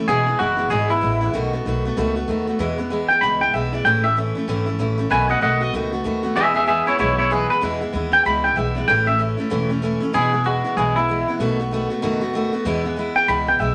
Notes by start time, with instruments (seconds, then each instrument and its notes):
0.08 upright bass E1, steel-string acoustic guitar E2 B2 E3 G#3 B3 E4, clean electric guitar G#4
0.26 steel-string acoustic guitar E3 G#3 B3 E4
0.39 upright bass F#1, steel-string acoustic guitar E3 G#3 B3 E4, clean electric guitar F#4
0.57 steel-string acoustic guitar E3 G#3 B3 E4
0.70 upright bass G#1, steel-string acoustic guitar E2 B2 E3 G#3 B3 E4, clean electric guitar G#4
0.89 steel-string acoustic guitar E3 G#3 B3 E4, clean electric guitar E4
1.01 upright bass A1, steel-string acoustic guitar E3 G#3 B3 E4
1.21 steel-string acoustic guitar E3 G#3 B3 E4
1.33 upright bass B1, steel-string acoustic guitar B2 D#3 A3 B3 F#4
1.53 steel-string acoustic guitar A3 B3 F#4
1.65 upright bass B1, steel-string acoustic guitar D#3 A3 B3 F#4
1.85 steel-string acoustic guitar A3 B3 F#4
1.97 upright bass C#2, steel-string acoustic guitar B2 D#3 A3 B3 F#4
2.16 steel-string acoustic guitar A3 B3 F#4
2.28 upright bass D#2, steel-string acoustic guitar D#3 A3 B3 F#4
2.47 steel-string acoustic guitar A3 B3 F#4
2.59 upright bass E2, steel-string acoustic guitar E2 B2 E3 G#3 B3 E4
2.78 steel-string acoustic guitar E3 G#3 B3 E4
2.90 steel-string acoustic guitar E3 G#3 B3 E4
3.08 steel-string acoustic guitar G#3 B3 E4, clean electric guitar G5
3.13 steel-string acoustic guitar E3
3.21 upright bass C#2, steel-string acoustic guitar E2 B2 E3 G#3 B3 E4, clean electric guitar B5
3.40 steel-string acoustic guitar E3 G#3 B3 E4, clean electric guitar G5
3.53 upright bass B1, steel-string acoustic guitar E3 G#3 B3 E4, clean electric guitar E5
3.73 steel-string acoustic guitar E3 G#3 B3 E4, clean electric guitar D5
3.85 upright bass A1, steel-string acoustic guitar A2 E3 A3 C#4 E4, clean electric guitar G5
4.04 steel-string acoustic guitar A3 C#4 E4, clean electric guitar E5
4.17 steel-string acoustic guitar E3 A3 C#4 E4
4.35 steel-string acoustic guitar A3 C#4 E4
4.48 upright bass G#1, steel-string acoustic guitar A2 E3 A3 C#4 E4
4.66 steel-string acoustic guitar A3 C#4 E4
4.79 upright bass A1, steel-string acoustic guitar E3 A3 C#4 E4
4.98 steel-string acoustic guitar A3 C#4 E4
5.10 upright bass B1, steel-string acoustic guitar B2 D#3 A3 B3 F#4, clean electric guitar B4 G#5
5.29 steel-string acoustic guitar A3 B3 F#4, clean electric guitar D#5 F#5
5.41 upright bass B1, steel-string acoustic guitar D#3 A3 B3 F#4, clean electric guitar D#5 F#5
5.60 steel-string acoustic guitar A3 B3 F#4, clean electric guitar D#5
5.73 upright bass C#2, steel-string acoustic guitar B2 D#3 A3 B3 F#4
5.93 steel-string acoustic guitar A3 B3 F#4
6.04 upright bass D#2, steel-string acoustic guitar D#3 A3 B3 F#4
6.23 steel-string acoustic guitar A3 B3 F#4
6.36 steel-string acoustic guitar E2 B2 E3 G#3 B3 E4, upright bass E2, clean electric guitar G#4 E5
6.54 steel-string acoustic guitar E3 G#3 B3 E4, clean electric guitar G#4 E5
6.67 steel-string acoustic guitar E3 G#3 B3 E4, clean electric guitar G#4 E5
6.86 steel-string acoustic guitar E3 G#3 B3 E4, clean electric guitar E4 C#5
6.98 upright bass B1, steel-string acoustic guitar E2 B2 E3 G#3 B3 E4, clean electric guitar E4 C#5
7.18 steel-string acoustic guitar E3 G#3 B3 E4, clean electric guitar E4 C#5
7.31 steel-string acoustic guitar E3 G#3 B3 E4, clean electric guitar G#4 B4
7.50 steel-string acoustic guitar E3 G#3 B3 E4, clean electric guitar B4
7.61 steel-string acoustic guitar E2 B2 E3 G#3 B3 E4, upright bass E2
7.81 steel-string acoustic guitar E3 G#3 B3 E4
7.93 upright bass D#2, steel-string acoustic guitar E3 G#3 B3 E4
8.12 steel-string acoustic guitar E3 G#3 B3 E4, clean electric guitar G5
8.25 upright bass C#2, steel-string acoustic guitar E2 B2 E3 G#3 B3 E4, clean electric guitar B5
8.44 steel-string acoustic guitar E3 G#3 B3 E4, clean electric guitar G5
8.56 upright bass B1, steel-string acoustic guitar E3 G#3 B3 E4, clean electric guitar E5
8.75 steel-string acoustic guitar E3 G#3 B3 E4, clean electric guitar D5
8.88 upright bass A1, steel-string acoustic guitar A2 E3 A3 C#4 E4, clean electric guitar G5
9.06 steel-string acoustic guitar A3 C#4 E4, clean electric guitar E5
9.18 steel-string acoustic guitar E3 A3 C#4 E4
9.37 steel-string acoustic guitar A3 C#4 E4
9.50 upright bass E1, steel-string acoustic guitar A2 E3 A3 C#4 E4
9.69 steel-string acoustic guitar A3 C#4 E4
9.82 steel-string acoustic guitar E3 A3 C#4 E4
10.00 steel-string acoustic guitar A3 C#4 E4
10.13 upright bass E1, steel-string acoustic guitar E2 B2 E3 G#3 B3 E4, clean electric guitar G#4
10.32 steel-string acoustic guitar E3 G#3 B3 E4
10.44 steel-string acoustic guitar E3 G#3 B3 E4, clean electric guitar F#4
10.64 steel-string acoustic guitar E3 G#3 B3 E4
10.77 upright bass B1, steel-string acoustic guitar E2 B2 E3 G#3 B3 E4, clean electric guitar G#4
10.96 steel-string acoustic guitar E3 G#3 B3 E4, clean electric guitar E4
11.09 steel-string acoustic guitar E3 G#3 B3 E4
11.28 steel-string acoustic guitar E3 G#3 B3 E4
11.39 upright bass B1, steel-string acoustic guitar B2 D#3 A3 B3 F#4
11.60 steel-string acoustic guitar A3 B3 F#4
11.71 steel-string acoustic guitar D#3 A3 B3 F#4
11.90 steel-string acoustic guitar A3 B3 F#4
12.02 upright bass F#1, steel-string acoustic guitar B2 D#3 A3 B3 F#4
12.21 steel-string acoustic guitar A3 B3 F#4
12.34 steel-string acoustic guitar D#3 A3 B3 F#4
12.53 steel-string acoustic guitar A3 B3 F#4
12.65 upright bass E2, steel-string acoustic guitar E2 B2 E3 G#3 B3 E4
12.84 steel-string acoustic guitar E3 G#3 B3 E4
12.96 steel-string acoustic guitar E3 G#3 B3 E4
13.16 steel-string acoustic guitar E3 G#3 B3 E4, clean electric guitar G5
13.28 upright bass C#2, steel-string acoustic guitar E2 B2 E3 G#3 B3 E4, clean electric guitar B5
13.47 steel-string acoustic guitar E3 G#3 B3 E4, clean electric guitar G5
13.59 upright bass B1, steel-string acoustic guitar E3 G#3 B3 E4, clean electric guitar E5